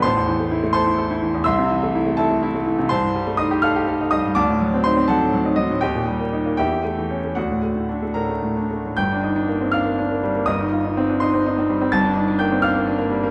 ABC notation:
X:1
M:6/8
L:1/16
Q:3/8=82
K:Ador
V:1 name="Grand piano"
[cac']6 [cac']6 | [ec'e']6 [Aea]4 z2 | [K:Gm] [cac']4 [ee']2 [ff']4 [ee']2 | [dad']4 [cc']2 [A^fa]4 [Ee]2 |
[Geg]6 [G=eg]6 | [^Fd^f]6 [Bb]6 | [gg']6 [ff']6 | [ee']6 [cc']2 z4 |
[aa']4 [gg']2 [ff']6 |]
V:2 name="Grand piano"
A,,, E,, E, A, E A, A E A E E, E,, | C,, C, E, A, E A, E A, E A, E, C, | [K:Gm] C,, G,, G, A, E G A G A E G, G,, | D,, A,, ^F, C E C F, A,, F, E F, A,, |
E,, B,, G, B, E B, =E,, =E, A, E, ^C A, | D,, A,, A, A,, D A, A,, A, A,, D A, A,, | [G,,,G,,] D E D B, C D B, D B, G, B, | [G,,,G,,] E F E C D E C E C G, C |
[G,,,G,,] D E D B, C D B, D B, G, B, |]